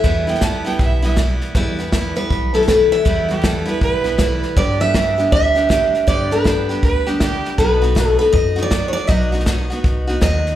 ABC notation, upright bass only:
X:1
M:4/4
L:1/8
Q:"Swing" 1/4=159
K:Em
V:1 name="Upright bass" clef=bass
E,,4 B,,,4 | E,,4 B,,,4 | E,,4 B,,,4 | G,,4 D,,4 |
G,,4 D,,4 | B,,,4 F,,4 | B,,,4 C,,2 ^D,,2 |]